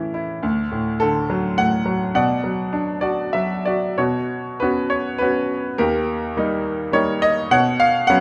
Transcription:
0.00 0.39 A2 soft
0.00 0.45 E3 soft
0.00 0.40 C#4 soft
0.00 0.13 E4 soft
0.00 0.45 C#5 soft
0.00 0.45 E5 medium
0.14 0.42 E4 soft
0.43 2.11 D2 medium
0.71 1.56 A2 soft
1.00 2.12 D3 medium
1.00 1.53 A4 medium
1.30 1.84 F#3 soft
1.58 2.13 A2 soft
1.58 2.11 F#5 medium
1.86 2.14 F#3 soft
2.15 3.95 B2 medium
2.15 3.00 D5 soft
2.15 3.30 F#5 medium
2.44 3.33 F#3 soft
2.73 3.95 D4 soft
3.01 3.66 F#4 soft
3.01 3.35 D5 medium
3.33 3.97 F#3 soft
3.33 3.64 E5 medium
3.65 3.97 F#4 soft
3.65 3.96 D5 medium
3.98 5.74 B2 soft
3.98 4.61 F#4 soft
3.98 4.62 C#5 medium
4.60 5.09 B3 soft
4.60 5.09 C#4 soft
4.60 5.09 F#4 soft
4.60 4.91 B4 medium
4.90 5.18 C#5 medium
5.18 5.67 B3 soft
5.18 5.67 C#4 soft
5.18 5.68 F#4 soft
5.18 5.73 B4 medium
5.78 7.47 D#2 medium
5.78 6.90 G4 soft
5.78 6.89 A#4 medium
6.37 6.82 G3 soft
6.37 6.82 A#3 soft
6.37 6.83 D#4 medium
6.92 7.39 G3 soft
6.92 7.39 A#3 soft
6.92 7.40 D#4 medium
6.92 7.23 C#5 medium
7.22 7.52 D#5 medium
7.51 8.20 B2 medium
7.51 8.20 C#5 medium
7.51 7.79 F#5 medium
7.80 8.10 F5 medium
8.07 8.20 F#3 medium
8.07 8.20 B3 soft
8.07 8.20 C#4 medium
8.07 8.20 F#5 medium

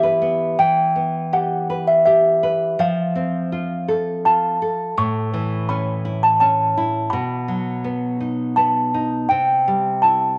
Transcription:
0.00 0.55 E3 medium
0.00 0.21 B3 soft
0.00 0.57 G4 medium
0.00 0.55 B4 medium
0.00 0.62 E5 medium
0.22 0.58 B3 soft
0.59 2.76 E3 medium
0.59 1.35 G5 medium
0.96 2.39 B3 soft
1.33 2.05 G4 soft
1.33 1.90 F#5 medium
1.70 2.42 B4 soft
1.87 1.96 E5 medium
2.06 2.78 G4 soft
2.06 2.82 E5 medium
2.43 2.79 B4 soft
2.79 4.94 F3 medium
2.79 4.30 F5 medium
3.15 4.57 C4 soft
3.52 4.24 F4 soft
3.88 4.61 A4 soft
4.25 4.96 F4 soft
4.25 4.94 A5 medium
4.62 4.97 A4 soft
4.97 7.08 A2 medium
4.97 5.72 C#6 medium
5.34 6.73 E3 soft
5.69 6.40 C#4 soft
5.69 6.19 B5 medium
6.05 6.76 E4 soft
6.23 6.31 A5 medium
6.40 7.10 C#4 medium
6.40 7.08 A5 medium
6.77 7.12 E4 soft
7.10 9.26 B2 medium
7.10 8.60 B5 medium
7.48 8.90 F#3 soft
7.84 8.56 B3 soft
8.20 8.93 D#4 soft
8.56 9.28 B3 soft
8.56 9.32 A5 medium
8.94 9.29 D#4 soft
9.29 10.38 C3 medium
9.29 10.04 G5 medium
9.68 10.38 G3 soft
10.02 10.38 E4 soft
10.02 10.38 A5 medium

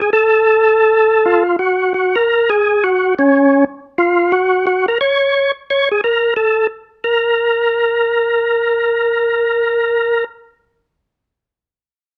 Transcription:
0.02 0.10 G#4 medium
0.13 1.43 A4 loud
1.26 1.56 F4 medium
1.59 1.93 F#4 medium
1.94 2.16 F#4 medium
2.15 2.50 A#4 medium
2.50 2.84 G#4 medium
2.84 3.15 F#4 medium
3.19 3.65 C#4 medium
3.98 4.32 F4 medium
4.32 4.66 F#4 medium
4.67 4.86 F#4 medium
4.88 4.98 A#4 medium
5.01 5.52 C#5 medium
5.70 5.89 C#5 medium
5.91 6.01 G#4 medium
6.04 6.34 A#4 medium
6.36 6.67 A4 medium
7.04 10.24 A#4 medium

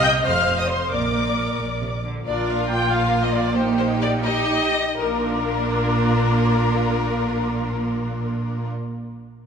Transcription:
0.00 0.18 C2 loud
0.00 0.18 C3 loud
0.00 0.25 D#5 loud
0.00 0.11 G5 loud
0.00 0.11 G6 loud
0.25 0.83 F1 medium
0.25 0.84 F2 medium
0.25 0.91 C5 loud
0.25 0.58 F5 loud
0.25 0.57 F6 loud
0.58 0.69 D#5 medium
0.58 0.69 D#6 medium
0.69 0.91 C5 medium
0.69 0.91 C6 loud
0.91 1.51 A#1 medium
0.91 1.51 A#2 medium
0.91 1.92 A#4 medium
0.91 2.01 D5 medium
0.91 2.01 D6 loud
1.59 2.18 A#1 medium
1.59 1.67 A#2 medium
1.81 1.89 C3 medium
2.04 2.25 D3 medium
2.25 4.72 A#1 medium
2.25 4.72 A#2 medium
2.25 2.86 D4 medium
2.25 3.51 F4 medium
2.25 2.86 A#4 medium
2.25 2.45 D5 medium
2.47 2.68 F5 loud
2.68 2.89 G5 loud
2.89 4.25 A#3 medium
2.89 3.54 A#4 medium
2.89 3.22 F5 loud
3.23 3.33 D#5 medium
3.33 3.55 D5 loud
3.55 4.23 D#4 medium
3.55 4.23 G4 medium
3.55 3.63 C5 loud
3.78 3.86 C5 loud
4.01 4.09 D5 loud
4.24 4.75 D#4 medium
4.24 4.76 D#4 medium
4.24 4.75 G4 medium
4.24 4.76 G4 medium
4.24 4.98 D#5 loud
4.99 8.69 A#1 medium
4.99 8.69 A#2 medium
4.99 8.68 A#3 medium
4.99 8.68 D4 medium
4.99 8.68 F4 medium
4.99 8.68 A#4 loud
4.99 8.69 A#4 medium

